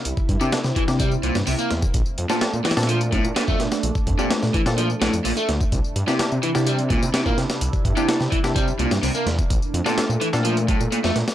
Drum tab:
HH |x---x---x---x---x---x---o-x-x---|x---x---x---xxxxx-x-x---x---x---|x---x---x---x---x---x-x-o-x-x---|x---x---x---x---x-x-x---x---x---|
TB |x-x---x-x-x---x-x-x---x-x-x---x-|x-x---x-x-x---x-x-x---x-x-x---x-|x-x---x-x-x---x-x-x---x-x-x---x-|x-x---x-x-x---x-x-x---x-x-x---x-|
SD |--------o-o---o-------o-----o---|------o-o---oooo--------o---o-o-|--------o-o---o-----o-------o---|------o-o-----o---------o---o-o-|
BD |--o-o-------o---o-------------o-|o-------------------o-----o-----|--o-o-------o-----------------o-|o-------------------o-----o-----|

HH |x---x---x---x---x---x---o-x-x---|x---x---x---x---x-x-x---x---x---|
TB |x-x---x-x-x---x-x-x---x-x-x---x-|x-x---x-x-x---x-x-x---x-x-x---x-|
SD |--------o-o---o-------o-----o---|------o-o-----o-----------o-o-o-|
BD |--o-o-------o---o-------------o-|o-------------------o-----------|